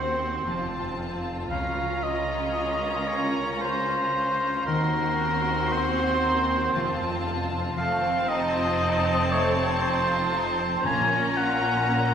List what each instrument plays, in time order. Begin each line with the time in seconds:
Already playing: cello section D#2, double bass section D#2, harp D#3 A#3 C4 F#4 C5, viola section C4, violin section F#4 F#5, oboe C5
0.47 double bass section F1, cello section F2, harp F3, violin section F4 A5
0.99 harp F4 A4
1.50 double bass section C#2, cello section C#2, harp C#3, viola section C#4, oboe F5, violin section A#5
2.03 harp F4, oboe D#5
2.56 harp A#3
3.08 harp A#4, oboe C#5
3.60 harp F4, oboe C5
4.13 harp C#4
4.66 cello section D#2, double bass section D#2, harp D#3, viola section C4, violin section F#4 C6, oboe A#4
5.19 harp F#4
5.71 harp C4, oboe C5
6.23 harp A#4
6.75 double bass section F1, cello section F2, harp F3, violin section F4 A5
7.26 harp F4 A4
7.77 double bass section F1, cello section F2, harp F3, violin section A3 A5, viola section C4, oboe F5
8.02 violin section C4
8.28 violin section D#4, harp A4, oboe D#5
8.55 violin section F4
8.80 violin section D#4, harp F4
9.05 violin section C4
9.31 violin section A3, harp C5, oboe C#5
9.57 violin section C4
9.81 violin section D#4, harp A4, oboe C5
10.07 violin section F4
10.32 harp C4, violin section D#4
10.59 violin section C4
10.84 double bass section A#1, harp A#2, timpani A#2, cello section A#2, violin section A#3 A#5, viola section C#4, oboe G#5
11.10 violin section C#4
11.35 harp F4, violin section F4, oboe F#5
11.62 violin section C#4
11.86 violin section A#3, harp C#4